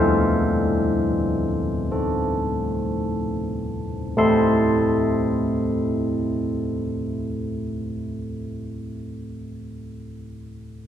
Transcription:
0.00 4.14 A3 soft
0.00 2.99 C5 medium
1.91 4.14 C4 soft
1.91 4.14 A4 soft
4.17 9.04 A3 soft
4.17 9.05 E4 soft
4.17 9.05 C5 soft
4.17 9.05 E5 soft
4.17 9.05 A5 soft
4.17 9.06 C6 soft

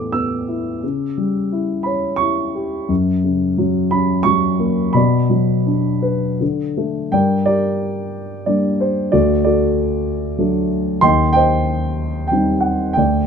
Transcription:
0.00 0.78 A2 soft
0.00 0.44 E3 soft
0.00 0.12 B3 soft
0.00 0.80 A4 soft
0.00 0.14 D6 medium
0.12 0.80 B3 soft
0.12 0.78 E6 medium
0.48 0.82 E4 soft
0.83 2.86 C#3 soft
1.17 2.51 G3 soft
1.52 2.19 E4 soft
1.83 2.87 C#5 soft
1.83 2.20 B5 medium
2.16 2.88 E4 soft
2.16 2.84 C#6 medium
2.55 2.89 G4 soft
2.89 4.91 F#2 medium
3.24 4.56 C#3 soft
3.58 4.24 F#3 soft
3.91 4.92 C#4 medium
3.91 4.27 B5 medium
4.23 4.93 F#3 soft
4.23 4.90 C#6 medium
4.59 4.94 A#3 soft
4.93 6.37 B2 medium
4.93 6.38 D5 medium
4.93 6.36 B5 medium
5.30 6.37 F#3 soft
5.66 6.39 D4 soft
6.02 6.39 B4 medium
6.40 7.10 D3 medium
6.77 7.12 A3 soft
7.12 9.08 G2 soft
7.12 7.45 A#4 soft
7.12 7.44 D5 medium
7.12 7.47 G5 medium
7.46 8.44 G4 soft
7.46 8.43 A#4 soft
7.46 8.45 D5 medium
8.46 9.10 G3 soft
8.46 9.10 A#3 soft
8.46 9.11 D4 soft
8.46 8.81 D5 medium
8.81 9.13 C5 medium
9.12 10.99 D2 medium
9.12 9.44 F#4 medium
9.12 9.44 A4 soft
9.12 9.43 D5 medium
9.44 10.68 F#4 medium
9.44 10.68 A4 soft
9.44 10.67 D5 medium
10.38 11.01 F#3 soft
10.38 11.01 A3 soft
10.38 11.01 D4 soft
11.01 12.93 D#2 medium
11.01 11.34 D#5 medium
11.01 11.31 G5 medium
11.01 11.35 C6 medium
11.33 12.28 C5 medium
11.33 12.28 D#5 medium
11.33 12.26 G5 medium
12.27 12.95 G3 soft
12.27 12.63 G5 medium
12.32 12.95 C4 soft
12.32 12.96 D#4 soft
12.61 12.96 F#5 medium
12.93 13.27 D2 medium
12.93 13.24 G5 medium
12.98 13.27 D5 soft

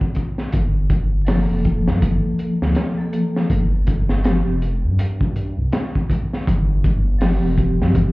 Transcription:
0.01 kick medium
0.15 kick medium
0.15 closed hi-hat medium
0.38 snare soft
0.52 1.46 G1 loud
0.52 kick medium
0.52 closed hi-hat medium
0.90 kick medium
0.90 closed hi-hat medium
1.25 2.92 F3 medium
1.25 snare loud
1.25 open hi-hat medium
1.29 2.94 A#3 medium
1.34 2.96 A4 medium
1.50 1.89 F1 medium
1.65 kick medium
1.65 closed hi-hat medium
1.87 2.00 G2 medium
1.87 snare medium
2.02 2.22 G1 medium
2.02 kick loud
2.02 closed hi-hat medium
2.39 closed hi-hat medium
2.62 2.75 D2 medium
2.62 snare soft
2.75 snare loud
2.75 closed hi-hat medium
2.98 3.48 F3 medium
2.98 3.49 A#3 medium
2.98 3.50 A4 medium
3.13 closed hi-hat medium
3.36 snare soft
3.50 4.42 G1 loud
3.50 kick loud
3.50 closed hi-hat medium
3.87 kick medium
3.87 closed hi-hat medium
4.09 snare medium
4.24 4.45 F3 medium
4.24 4.46 C4 medium
4.24 snare loud
4.24 closed hi-hat medium
4.28 4.48 G4 medium
4.47 4.85 F1 medium
4.62 closed hi-hat medium
4.84 5.33 G2 loud
4.99 closed hi-hat medium
5.21 kick medium
5.36 5.55 G2 medium
5.36 closed hi-hat medium
5.58 5.71 C2 medium
5.72 snare medium
5.72 closed hi-hat medium
5.95 kick medium
6.10 kick loud
6.10 closed hi-hat medium
6.33 snare soft
6.47 7.39 G1 loud
6.47 kick loud
6.47 closed hi-hat medium
6.84 kick loud
6.84 closed hi-hat medium
7.19 8.12 F3 medium
7.19 snare loud
7.19 open hi-hat medium
7.23 8.12 C4 medium
7.23 8.12 G4 medium
7.43 7.82 F1 medium
7.58 kick medium
7.58 closed hi-hat medium
7.80 7.93 G2 medium
7.80 snare soft
7.95 8.12 G1 medium
7.95 kick loud
7.95 closed hi-hat medium

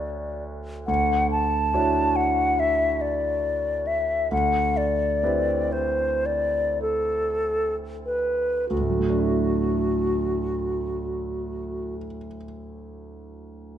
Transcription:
0.00 0.84 D4 soft
0.00 0.84 F#4 soft
0.00 0.85 A4 soft
0.00 0.85 C#5 soft
0.00 0.43 D5 medium
0.87 1.71 D2 soft
0.87 1.27 F#5 medium
1.31 2.18 A5 medium
1.74 4.28 D4 soft
1.74 4.28 E4 soft
1.74 4.28 F#4 soft
1.74 4.28 C#5 soft
2.16 2.61 F#5 medium
2.60 3.03 E5 medium
3.01 3.88 D5 medium
3.87 4.31 E5 medium
4.31 5.20 D2 soft
4.31 4.79 F#5 medium
4.77 5.74 D5 medium
5.23 8.66 C4 soft
5.23 8.67 E4 soft
5.23 8.67 G4 soft
5.23 8.67 B4 soft
5.72 6.27 C5 soft
6.26 6.81 D5 medium
6.82 7.74 A4 medium
8.06 8.69 B4 soft
8.69 11.96 D2 soft
8.69 11.95 F#4 soft
8.80 12.06 A2 soft
8.90 12.15 F#3 soft
8.99 12.25 A3 soft
9.10 12.35 D4 soft
9.18 12.44 E4 soft

